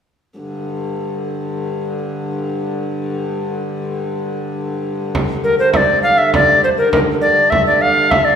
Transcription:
0.40 5.15 G2 medium
0.40 5.15 D3 medium
5.15 8.36 G2 medium
5.15 8.36 D3 medium
5.15 frame drum medium
5.44 5.58 A#4 medium
5.59 5.73 C5 medium
5.73 6.01 D5 medium
5.73 5.78 E5 medium
5.73 frame drum medium
6.03 6.19 F5 medium
6.18 6.33 E5 medium
6.34 6.61 D5 medium
6.34 frame drum medium
6.64 6.70 C5 medium
6.78 6.92 A#4 medium
6.93 6.99 A#4 medium
6.93 frame drum medium
7.21 7.52 D5 medium
7.50 7.66 E5 medium
7.50 frame drum medium
7.66 7.83 D5 medium
7.81 8.12 F5 medium
8.11 8.26 E5 medium
8.11 frame drum medium
8.25 8.36 D5 medium

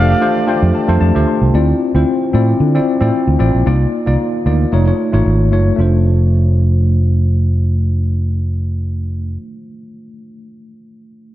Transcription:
0.00 0.13 F1 medium
0.00 0.21 A3 medium
0.00 1.23 A3 medium
0.00 0.21 D4 medium
0.00 1.23 D4 loud
0.00 0.21 F4 medium
0.00 0.22 G4 medium
0.00 1.23 G4 medium
0.00 0.22 C5 loud
0.00 1.23 D5 loud
0.00 1.02 F5 loud
0.21 0.41 A3 medium
0.21 0.42 D4 medium
0.21 0.42 F4 medium
0.21 0.42 G4 medium
0.21 0.42 C5 loud
0.21 0.46 F5 medium
0.47 0.77 A3 loud
0.47 0.77 D4 medium
0.47 0.77 F4 medium
0.47 0.77 G4 medium
0.47 0.78 C5 loud
0.47 0.72 G5 medium
0.63 0.71 F2 loud
0.75 0.99 A5 medium
0.88 0.97 F2 loud
0.88 1.07 A3 medium
0.88 1.08 D4 medium
0.88 1.08 F4 medium
0.88 1.08 G4 medium
0.88 1.08 C5 loud
1.01 1.11 F2 loud
1.01 1.26 A5 medium
1.15 1.24 D2 medium
1.15 1.44 A3 medium
1.15 1.44 D4 medium
1.15 1.45 F4 medium
1.15 1.45 G4 medium
1.15 1.45 C5 loud
1.27 1.52 C6 medium
1.42 1.50 C2 medium
1.54 1.72 D2 loud
1.54 1.84 C4 loud
1.54 1.84 E4 medium
1.54 1.84 F4 medium
1.54 1.84 D5 loud
1.94 2.03 D2 loud
1.94 2.24 C4 medium
1.94 2.24 E4 medium
1.94 2.24 F4 medium
1.94 2.25 C5 loud
2.33 2.52 A2 loud
2.33 2.63 C4 medium
2.33 2.63 E4 medium
2.33 2.64 F4 medium
2.33 2.64 D5 loud
2.60 2.78 D3 loud
2.75 2.94 C4 medium
2.75 2.94 E4 medium
2.75 2.94 F4 medium
2.75 2.94 D5 loud
3.01 3.10 A2 medium
3.01 3.30 C4 loud
3.01 3.30 E4 medium
3.01 3.31 F4 medium
3.01 3.31 D5 loud
3.27 3.36 D2 medium
3.39 3.50 A1 medium
3.39 3.60 C4 medium
3.39 3.60 E4 medium
3.39 3.60 F4 medium
3.39 3.60 D5 loud
3.55 3.63 A#1 medium
3.66 3.85 C2 loud
3.66 3.96 A#3 medium
3.66 3.96 D#4 medium
3.66 3.96 F4 medium
3.66 3.96 D5 loud
4.06 4.16 C2 medium
4.06 4.36 A#3 medium
4.06 4.36 D#4 medium
4.06 4.36 F4 medium
4.06 4.36 D5 loud
4.46 4.64 D2 medium
4.46 4.72 A#3 medium
4.46 4.71 D#4 medium
4.46 4.72 F4 medium
4.46 4.73 D5 loud
4.72 4.91 F1 medium
4.72 4.84 A3 loud
4.72 4.84 D#4 medium
4.72 4.84 F4 medium
4.72 4.84 C#5 loud
4.86 5.06 A3 medium
4.86 5.06 D#4 medium
4.86 5.06 F4 medium
4.86 5.06 C#5 medium
5.12 5.22 G#1 medium
5.12 5.42 A3 medium
5.12 5.42 D#4 medium
5.12 5.42 F4 medium
5.12 5.43 C#5 loud
5.26 5.52 G#1 medium
5.52 5.70 F#1 medium
5.52 5.72 A3 medium
5.52 5.72 D#4 medium
5.52 5.72 F4 medium
5.52 5.73 C#5 loud
5.76 9.36 F1 medium
5.76 9.34 A3 medium
5.76 9.36 D4 medium
5.76 9.37 F4 medium
5.81 9.39 C5 medium

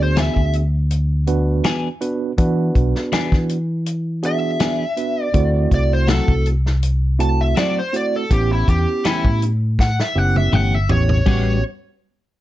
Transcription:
0.00 0.27 D2 medium
0.00 0.61 B3 medium
0.00 0.61 D4 medium
0.00 0.61 F#4 medium
0.00 0.61 G#4 loud
0.00 0.18 C5 medium
0.16 0.40 E3 medium
0.16 0.40 B3 medium
0.16 0.40 D4 medium
0.16 0.40 G#4 medium
0.16 0.54 E5 medium
0.16 snare loud
0.16 closed hi-hat medium
0.36 1.60 D2 medium
0.36 kick medium
0.53 closed hi-hat medium
0.91 closed hi-hat medium
1.27 1.87 B3 medium
1.27 1.87 D4 medium
1.27 1.87 F#4 medium
1.27 1.88 B4 medium
1.27 closed hi-hat medium
1.64 1.88 E3 medium
1.64 1.88 B3 loud
1.64 1.88 D4 medium
1.64 1.88 G#4 loud
1.64 snare loud
1.64 closed hi-hat medium
2.01 2.31 B3 medium
2.01 2.31 D4 medium
2.01 2.31 F#4 medium
2.01 2.31 B4 medium
2.01 closed hi-hat medium
2.37 2.69 E3 loud
2.37 3.56 B3 medium
2.37 3.56 D4 medium
2.37 3.56 F#4 medium
2.37 3.56 B4 loud
2.37 kick loud
2.37 closed hi-hat medium
2.75 2.92 B1 medium
2.75 kick medium
2.75 closed hi-hat medium
2.96 snare soft
3.12 3.36 E3 medium
3.12 3.36 B3 loud
3.12 3.36 D4 medium
3.12 3.36 G#4 loud
3.12 muted fingered electric bass stroke soft
3.12 snare loud
3.12 closed hi-hat medium
3.32 4.56 E3 medium
3.32 kick medium
3.32 snare soft
3.49 closed hi-hat medium
3.86 closed hi-hat medium
4.23 4.83 B3 medium
4.23 4.83 D4 medium
4.23 4.83 F#4 medium
4.23 4.83 G#4 medium
4.23 5.24 E5 medium
4.23 closed hi-hat medium
4.60 4.83 E3 medium
4.60 4.84 B3 medium
4.60 4.84 D4 medium
4.60 4.84 G#4 medium
4.60 snare loud
4.60 closed hi-hat medium
4.97 5.27 B3 medium
4.97 5.27 D4 medium
4.97 5.27 F#4 medium
4.97 5.27 B4 medium
4.97 closed hi-hat medium
5.24 5.69 D5 medium
5.34 5.65 D2 loud
5.34 6.52 A3 medium
5.34 6.52 C4 medium
5.34 6.52 E4 medium
5.34 6.52 F#4 medium
5.34 kick loud
5.34 closed hi-hat medium
5.71 6.19 C2 medium
5.71 5.92 D5 medium
5.71 kick medium
5.71 closed hi-hat medium
5.93 6.09 C5 medium
6.07 6.31 F#3 medium
6.07 6.32 A3 medium
6.07 6.32 C4 medium
6.07 6.32 F#4 medium
6.07 6.45 A4 medium
6.07 snare loud
6.07 closed hi-hat medium
6.28 7.53 C2 medium
6.28 kick medium
6.46 closed hi-hat medium
6.66 snare soft
6.83 closed hi-hat medium
7.19 7.79 A3 medium
7.19 7.79 C4 medium
7.19 7.79 E4 medium
7.19 7.79 F#4 medium
7.19 7.39 A5 loud
7.19 closed hi-hat medium
7.41 7.58 E5 medium
7.56 7.80 F#3 medium
7.56 7.80 A3 medium
7.56 7.80 C4 medium
7.56 7.80 F#4 medium
7.56 7.77 D5 medium
7.56 snare loud
7.56 closed hi-hat medium
7.79 7.94 C5 medium
7.93 8.23 A3 medium
7.93 8.23 C4 medium
7.93 8.23 E4 medium
7.93 8.23 F#4 medium
7.93 8.14 D5 medium
7.93 closed hi-hat medium
8.16 8.31 A4 medium
8.30 8.62 A1 loud
8.30 9.49 B3 medium
8.30 9.49 C#4 medium
8.30 9.48 E4 medium
8.30 9.49 G4 medium
8.30 8.51 G4 medium
8.30 kick loud
8.30 closed hi-hat medium
8.52 8.68 E4 medium
8.68 8.84 E2 loud
8.68 9.05 G4 medium
8.68 kick medium
8.68 closed hi-hat medium
9.05 9.28 E3 medium
9.05 9.28 A3 medium
9.05 9.28 C#4 medium
9.05 9.41 E4 medium
9.05 9.28 G4 medium
9.05 muted fingered electric bass stroke soft
9.05 snare loud
9.05 closed hi-hat medium
9.24 10.01 A2 medium
9.24 kick medium
9.42 closed hi-hat medium
9.79 9.99 F#5 medium
9.79 kick medium
9.79 snare medium
10.00 10.18 E5 medium
10.00 snare medium
10.15 10.49 F#1 medium
10.15 10.75 B3 medium
10.15 10.75 C#4 medium
10.15 10.75 E4 medium
10.15 10.75 G4 medium
10.15 10.36 F#5 medium
10.36 10.55 E5 medium
10.36 high tom medium
10.52 10.86 G1 medium
10.52 10.76 E3 medium
10.52 10.76 A3 medium
10.52 10.76 C#4 medium
10.52 10.76 G4 loud
10.52 10.75 F#5 medium
10.52 mid tom medium
10.75 10.90 E5 medium
10.89 11.23 A1 medium
10.89 11.19 B3 medium
10.89 11.19 C#4 medium
10.89 11.19 E4 medium
10.89 11.19 G4 medium
10.89 11.27 C#5 medium
10.89 floor tom loud
11.09 floor tom medium
11.26 11.61 A1 medium
11.26 11.56 G3 medium
11.26 11.61 B3 medium
11.26 11.57 B3 medium
11.26 11.61 C#4 medium
11.26 11.57 C#4 medium
11.26 11.61 F#4 medium
11.26 11.58 F#4 medium
11.26 11.61 G4 medium
11.26 11.62 C#5 medium
11.26 kick loud
11.26 crash medium

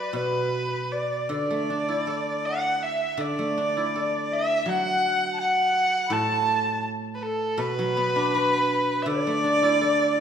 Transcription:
0.00 0.92 F#3 medium
0.00 0.15 B4 medium
0.00 0.18 D5 medium
0.13 1.30 B2 soft
0.13 0.93 B4 medium
0.13 0.95 B4 medium
0.92 1.31 D5 medium
0.92 1.32 D5 medium
1.29 3.16 D3 soft
1.29 2.46 D5 medium
1.33 2.16 D5 medium
1.51 3.02 A3 soft
1.70 3.21 D4 soft
1.89 3.40 E4 soft
2.07 3.58 A4 soft
2.45 2.84 F#5 medium
2.45 2.86 F#5 medium
2.83 3.22 E5 medium
3.17 5.38 D3 medium
3.17 3.95 D5 medium
3.17 4.35 D5 medium
3.39 4.86 A3 soft
3.58 5.04 D4 soft
3.77 5.22 E4 soft
3.95 5.40 A4 soft
3.95 4.33 D5 medium
4.32 4.70 E5 medium
4.32 4.71 E5 medium
4.66 6.84 F#3 medium
4.66 5.32 F#5 medium
4.66 5.39 F#5 medium
5.33 5.41 A5 soft
5.40 6.14 F#5 medium
5.40 5.94 F#5 medium
5.95 6.05 F#5 medium
6.08 7.58 A2 medium
6.08 6.14 B5 medium
6.12 6.85 A5 medium
7.15 7.24 B4 medium
7.21 7.60 A4 medium
7.58 9.07 B2 medium
7.58 9.08 B4 medium
7.58 9.04 B4 medium
7.79 9.26 F#3 soft
7.97 9.44 B3 soft
8.16 9.43 D4 soft
8.34 9.81 F#4 soft
9.02 10.20 D3 medium
9.02 9.09 E5 medium
9.07 10.20 D5 loud
9.27 10.20 A3 soft
9.44 10.20 D4 soft
9.63 10.20 E4 soft
9.81 10.20 A4 soft

